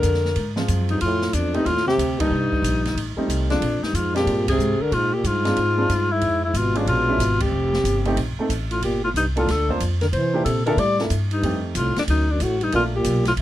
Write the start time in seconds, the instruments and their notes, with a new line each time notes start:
Already playing: trombone D3, alto saxophone A#4
0.03 upright bass F2, hi-hat pedal, ride
0.14 snare
0.25 snare
0.36 upright bass G#2, ride
0.56 grand piano F3 G#3 C4 F4, snare
0.68 upright bass F#2, hi-hat pedal, ride
0.89 trombone G2, alto saxophone D#4, ride
1.01 upright bass F2, trombone A2, alto saxophone F4, ride
1.22 snare
1.33 upright bass E2, trombone F2, alto saxophone D4, hi-hat pedal, ride
1.54 trombone G2, grand piano G3 A3 C4 D#4, alto saxophone D#4, ride
1.66 upright bass D#2, trombone A2, alto saxophone F4, ride
1.77 snare
1.86 trombone C3, alto saxophone G4, snare
1.98 upright bass D2, hi-hat pedal, ride
2.19 trombone G2, grand piano G3 A#3 D4 D#4, alto saxophone D#4, kick, ride
2.30 upright bass C2
2.52 muted upright bass stroke, kick
2.62 upright bass A#1, hi-hat pedal, ride
2.85 snare, ride
2.95 upright bass A1, ride
3.17 grand piano G3 A3 C4 D#4, muted upright bass stroke
3.28 upright bass C2, hi-hat pedal, ride
3.50 trombone F2, grand piano G#3 C4 D4 F4, alto saxophone D4, snare, ride
3.61 upright bass A#1, ride
3.82 trombone G2, alto saxophone D#4, muted upright bass stroke, snare
3.93 upright bass F2, trombone G#2, alto saxophone F4, hi-hat pedal, ride
4.15 trombone A#2, grand piano G#3 C4 D4 F4, alto saxophone G4, snare, ride
4.26 upright bass G2, ride
4.48 trombone C3, alto saxophone G#4, kick, ride
4.58 upright bass G#2, hi-hat pedal
4.79 trombone D3, alto saxophone A#4, muted upright bass stroke
4.91 trombone G#2, upright bass A#2, alto saxophone F4, ride
5.14 trombone A#2, alto saxophone G4
5.24 upright bass G2, trombone G#2, alto saxophone F4, hi-hat pedal, ride
5.45 grand piano G#3 C4 D4 F4, snare, ride
5.56 upright bass G#2, ride
5.77 grand piano G#3 C4 D4 F4
5.89 upright bass G2, hi-hat pedal, ride
6.12 trombone G#2, alto saxophone E4
6.21 upright bass F2, ride
6.45 trombone G#2, alto saxophone E4
6.54 upright bass G#1, trombone B2, alto saxophone F4, hi-hat pedal, ride
6.75 trombone G2, grand piano G#3 C#4 D4 F4, alto saxophone D4, ride
6.87 upright bass A#1, trombone B2, alto saxophone F4, ride
7.08 grand piano G#3 C#4 D4 E4
7.18 upright bass G#1, hi-hat pedal, ride
7.40 trombone C3, alto saxophone G4, kick, ride
7.52 upright bass F1
7.73 snare
7.84 upright bass G1, hi-hat pedal, ride
8.05 grand piano A3 C4 D#4 G4, ride
8.16 upright bass A#1, ride
8.37 grand piano A3 C4 D#4 A4, muted upright bass stroke
8.49 upright bass A1, hi-hat pedal, ride
8.71 trombone A2, alto saxophone F4, ride
8.82 upright bass G1, trombone A#2, alto saxophone G4, ride
9.04 trombone A2, alto saxophone F4
9.14 upright bass C2, trombone G2, alto saxophone D#4, hi-hat pedal, ride
9.36 trombone A2, grand piano A#3 D4 F4 A4, alto saxophone F4, ride
9.47 upright bass D2, trombone D3, alto saxophone A4, snare, ride
9.69 grand piano A#3 D4 F4 C5, kick
9.80 upright bass F2, hi-hat pedal, ride
10.01 trombone D3, alto saxophone A#4, snare, ride
10.13 upright bass C3, trombone E3, alto saxophone C5, ride
10.33 grand piano A#3 D4 E4 G4
10.45 upright bass A#2, trombone C3, alto saxophone A4, hi-hat pedal, ride
10.66 trombone D3, grand piano A#3 D4 E4 A4, alto saxophone A#4, ride
10.77 upright bass A2, trombone G3, alto saxophone D5, ride
10.99 grand piano A#3 D4 E4 A4, snare
11.10 upright bass G2, hi-hat pedal, ride
11.31 trombone G2, alto saxophone D#4, ride
11.43 upright bass F2, grand piano A3 C4 D#4 G4, ride
11.75 upright bass C2, trombone A2, alto saxophone F4, hi-hat pedal, ride
11.96 trombone F2, alto saxophone D4, snare, ride
12.08 upright bass D2, trombone F#2, alto saxophone D#4, ride
12.30 trombone F#2, alto saxophone D4
12.40 upright bass A1, trombone A2, alto saxophone F#4, hi-hat pedal, ride
12.61 trombone G2, alto saxophone D#4, ride
12.72 upright bass A#1, trombone A#2, grand piano A3 A#3 D4 F4, alto saxophone F4, ride
12.95 trombone A#2, alto saxophone G4
13.04 upright bass B1, hi-hat pedal, ride
13.25 trombone A2, alto saxophone F4, snare, ride
13.36 upright bass C2, ride